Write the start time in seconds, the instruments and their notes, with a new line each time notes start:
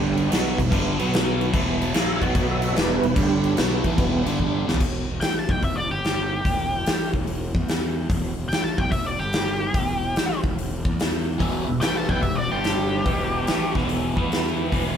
Already playing: fingered electric bass G1, overdriven electric guitar G2 D3 G3, tonewheel organ D3 G3 D4 G4
0.17 crash
0.30 fingered electric bass B1, overdriven electric guitar B2 F#3 B3, tonewheel organ G3 B3 E4, snare, crash
0.58 fingered electric bass E1, overdriven electric guitar E2 B2, kick, crash
0.70 fingered electric bass G1, overdriven electric guitar G2 D3 G3, kick, crash
0.98 fingered electric bass B1, overdriven electric guitar B2 F#3 B3, tonewheel organ F#3 B3 F#4, crash
1.14 snare, crash
1.41 crash
1.52 fingered electric bass E1, overdriven electric guitar E2 B2 E3, tonewheel organ G3 B3 E4, kick, crash
1.82 crash
1.93 fingered electric bass A#1, overdriven electric guitar A#2 F3 A#3, tonewheel organ E5, snare, crash
2.20 fingered electric bass B1, overdriven electric guitar B2 F#3 B3, tonewheel organ F#3 B3 F#4, kick, crash
2.35 kick, crash
2.50 tonewheel organ E5
2.62 crash
2.74 fingered electric bass E1, overdriven electric guitar E2 B2 E3, tonewheel organ G3 B3 E4, snare, crash
2.78 tonewheel organ D5
2.90 tonewheel organ B4
3.01 fingered electric bass E1, overdriven electric guitar E2 B2, crash
3.14 fingered electric bass G1, overdriven electric guitar G2 D3 G3, tonewheel organ D3 G3, kick, crash
3.19 tonewheel organ D4 G4
3.44 crash
3.56 fingered electric bass B1, overdriven electric guitar B2 F#3 B3, tonewheel organ E3 G3 B3, snare, crash
3.83 fingered electric bass A1, overdriven electric guitar A2 E3 A3, kick, crash
3.96 fingered electric bass E1, overdriven electric guitar E2 B2 E3, kick, crash
4.25 fingered electric bass G1, overdriven electric guitar G2 D3 G3, tonewheel organ D3 G3 D4, crash
4.40 kick
4.67 fingered electric bass E1, overdriven electric guitar E2 B2 E3, snare
4.74 floor tom
4.80 fingered electric bass E1, kick, crash
5.09 fingered electric bass E1
5.20 fingered electric bass A1, lead electric guitar G5, snare, open hi-hat
5.39 lead electric guitar A5
5.49 fingered electric bass B1, lead electric guitar G5, kick
5.62 fingered electric bass E1, lead electric guitar E5, kick, open hi-hat
5.76 lead electric guitar D5
5.91 fingered electric bass G1, lead electric guitar G4
6.04 snare, open hi-hat
6.45 fingered electric bass E1, kick, open hi-hat
6.86 fingered electric bass A1, snare, open hi-hat
7.14 fingered electric bass E1, kick
7.27 open hi-hat
7.55 fingered electric bass E2, kick
7.68 snare, open hi-hat
8.10 fingered electric bass E1, kick, open hi-hat
8.37 fingered electric bass E1
8.48 fingered electric bass A1, lead electric guitar G5, open hi-hat
8.53 snare
8.64 lead electric guitar A5
8.78 fingered electric bass B1, lead electric guitar G5, kick
8.91 fingered electric bass E1, lead electric guitar E5, kick, open hi-hat
9.06 lead electric guitar D5
9.19 fingered electric bass G1, lead electric guitar G4
9.33 snare, open hi-hat
9.74 fingered electric bass E1, kick, open hi-hat
10.16 fingered electric bass A1, snare, open hi-hat
10.44 fingered electric bass E1, kick
10.58 open hi-hat
10.85 fingered electric bass E2, kick
10.99 snare, open hi-hat
11.38 fingered electric bass E1, overdriven electric guitar E2 B2 E3, tonewheel organ E4 G4 B4 E5, kick, open hi-hat
11.64 tonewheel organ E4 G4 B4 E5
11.68 fingered electric bass E1, overdriven electric guitar E2 B2
11.80 fingered electric bass A1, overdriven electric guitar A2 E3 A3, tonewheel organ E4 G4 B4 E5, lead electric guitar G5, snare, open hi-hat
11.84 lead electric guitar B4
11.97 lead electric guitar C5 A5
12.07 fingered electric bass B1, overdriven electric guitar B2 F#3, tonewheel organ E4 G4 B4 E5, lead electric guitar B4 G5, kick
12.11 overdriven electric guitar B3
12.20 fingered electric bass E1, tonewheel organ E4 G4 B4 E5, lead electric guitar G4 E5, kick, open hi-hat
12.25 overdriven electric guitar E2 B2
12.36 lead electric guitar F#4 D5
12.49 overdriven electric guitar G2, tonewheel organ G3 D4 G4 D5, lead electric guitar D4 G4
12.53 fingered electric bass G1, overdriven electric guitar D3 G3
12.64 snare, open hi-hat
12.91 tonewheel organ G3 D4 G4 C5
13.03 fingered electric bass E1, overdriven electric guitar E2, tonewheel organ B3 E4 G4 B4, kick, open hi-hat
13.08 overdriven electric guitar B2 E3
13.30 tonewheel organ B3 E4 G4 B4
13.45 fingered electric bass A1, overdriven electric guitar A2 E3, tonewheel organ B3 E4 G4 B4, snare, open hi-hat
13.49 overdriven electric guitar A3
13.72 overdriven electric guitar E2 B2, tonewheel organ B3 E4 G4 B4, kick
13.76 fingered electric bass E1, overdriven electric guitar E3, snare
13.85 tonewheel organ B3 E4 G4 A4, open hi-hat
14.13 overdriven electric guitar E3, tonewheel organ B3 E4 G4 B4
14.17 fingered electric bass E2, overdriven electric guitar B3 E4, kick
14.26 tonewheel organ B3 E4 G4 B4
14.32 snare, open hi-hat
14.47 snare
14.57 tonewheel organ B3 E4 G4 B4
14.70 fingered electric bass E1, overdriven electric guitar E2 B2 E3, tonewheel organ B3 E4 G4 B4, kick, open hi-hat